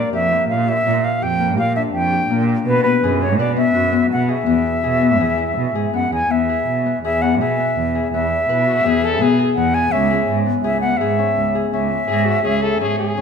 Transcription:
0.00 0.31 A#3 medium
0.00 0.92 D4 medium
0.00 0.13 G4 medium
0.00 1.89 A#4 medium
0.00 0.13 D5 medium
0.13 0.44 F2 medium
0.13 0.67 G4 medium
0.13 0.47 E5 medium
0.31 0.86 A#3 medium
0.49 0.80 A#2 medium
0.49 0.70 F5 medium
0.68 1.22 G4 medium
0.68 1.06 E5 medium
0.86 1.01 A#2 medium
0.86 1.39 A#3 medium
1.04 1.24 F5 medium
1.22 1.59 F2 medium
1.22 1.57 G4 medium
1.22 1.58 G5 medium
1.40 2.30 A#3 medium
1.58 1.88 A#2 medium
1.58 2.12 G4 medium
1.58 1.75 F5 medium
1.76 4.56 D4 medium
1.76 1.82 E5 medium
1.94 2.24 F2 medium
1.94 2.44 G5 medium
2.12 2.48 G4 medium
2.30 2.60 A#2 medium
2.30 2.91 A#3 medium
2.49 3.09 G4 medium
2.66 2.81 B2 medium
2.66 2.83 B4 medium
2.83 3.22 B3 medium
2.83 3.23 B4 medium
3.02 3.40 F#2 medium
3.02 4.28 G#4 medium
3.22 3.56 B3 medium
3.22 3.38 C#5 medium
3.38 3.69 B2 medium
3.38 5.44 B4 medium
3.38 3.56 D5 medium
3.56 3.92 B3 medium
3.56 4.07 E5 medium
3.75 4.05 F#2 medium
3.75 6.18 F#4 medium
3.92 4.46 B3 medium
4.11 4.41 B2 medium
4.11 4.22 F#5 medium
4.22 4.31 F#5 medium
4.28 4.83 G#4 medium
4.28 5.94 E5 medium
4.46 4.62 E2 medium
4.46 5.01 B3 medium
4.84 5.21 B2 medium
4.84 5.20 G#4 medium
5.02 5.93 B3 medium
5.20 5.51 E2 medium
5.20 5.75 G#4 medium
5.38 7.99 E4 medium
5.57 5.72 B2 medium
5.75 5.92 G#2 medium
5.75 6.12 G#4 medium
5.93 6.11 F#2 medium
5.93 6.30 B3 medium
5.93 6.12 F#5 medium
6.12 6.29 E2 medium
6.12 6.49 G#4 medium
6.12 6.33 G#5 medium
6.30 6.61 E2 medium
6.30 6.86 B3 medium
6.30 7.03 E5 medium
6.49 7.04 G#4 medium
6.67 6.98 B2 medium
6.86 7.23 B3 medium
7.03 7.42 E2 medium
7.03 7.41 G#4 medium
7.03 7.23 E5 medium
7.22 7.59 B3 medium
7.22 7.39 F#5 medium
7.40 7.55 B2 medium
7.40 7.95 G#4 medium
7.40 8.09 E5 medium
7.59 8.13 B3 medium
7.76 8.07 E2 medium
7.95 9.03 G#4 medium
8.13 8.43 E2 medium
8.13 8.86 B3 medium
8.13 9.27 E5 medium
8.49 8.79 B2 medium
8.49 8.66 E4 medium
8.49 10.54 B4 medium
8.67 8.87 F#4 medium
8.85 9.23 E2 medium
8.85 9.20 B3 medium
8.85 9.06 G#4 medium
9.03 9.39 G#4 medium
9.03 9.24 A4 medium
9.21 9.37 B2 medium
9.21 9.57 B3 medium
9.21 9.49 G#4 medium
9.39 9.75 G#4 medium
9.56 9.87 E2 medium
9.56 10.46 B3 medium
9.56 9.76 F#5 medium
9.74 10.10 G#4 medium
9.74 9.93 G#5 medium
9.92 10.23 C#2 loud
9.92 11.18 C#4 medium
9.92 10.37 E5 medium
10.10 10.64 G#4 medium
10.28 10.58 G#2 medium
10.46 10.82 B3 medium
10.62 11.02 C#2 medium
10.62 11.00 G#4 medium
10.62 10.80 E5 medium
10.81 13.21 B3 medium
10.81 10.99 F#5 medium
10.97 11.15 G#2 medium
10.97 11.55 G#4 medium
10.97 11.70 E5 medium
11.19 11.73 C#4 medium
11.36 11.66 C#2 medium
11.55 12.09 G#4 medium
11.71 12.03 C#2 medium
11.71 12.44 C#4 medium
11.71 13.13 E5 medium
12.08 12.39 G#2 medium
12.08 12.27 G#4 medium
12.08 12.62 G#4 medium
12.26 12.43 F#4 medium
12.43 12.83 C#2 medium
12.43 12.80 C#4 medium
12.43 12.64 G#4 medium
12.62 12.98 G#4 medium
12.62 12.80 A4 medium
12.81 12.97 G#2 medium
12.81 13.17 C#4 medium
12.81 12.98 G#4 medium
12.98 13.21 G#4 medium
13.18 13.21 C#2 medium
13.18 13.21 C#4 medium

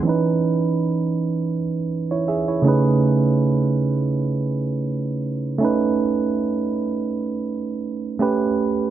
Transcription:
0.03 2.60 E3 medium
0.03 2.61 C#4 medium
0.07 1.52 D#4 medium
0.07 1.53 B4 medium
2.11 2.28 E4 medium
2.11 2.27 C#5 medium
2.28 2.47 G#4 medium
2.28 2.47 E5 medium
2.48 2.84 E4 medium
2.48 2.83 C#5 medium
2.62 5.56 C#3 medium
2.62 5.57 A3 medium
2.62 5.57 C#4 medium
2.62 5.58 D#4 medium
2.67 5.58 G#4 medium
2.67 5.59 B4 medium
5.58 8.15 A3 medium
5.58 8.16 C#4 medium
5.63 8.17 D#4 medium
5.63 8.18 B4 medium
8.19 8.90 A3 medium
8.19 8.90 C#4 medium
8.19 8.90 G4 medium
8.19 8.90 B4 medium

